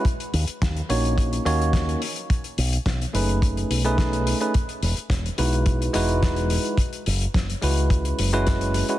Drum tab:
HH |xxoxxxoxxxoxxxox|xxoxxxoxxxoxxxox|xxoxxxoxxxoxxxox|xxoxxxoxxxoxxxox|
SD |----o-------o---|----o-------o---|----o-------o---|----o-------o---|
BD |o---o---o---o---|o---o---o---o---|o---o---o---o---|o---o---o---o---|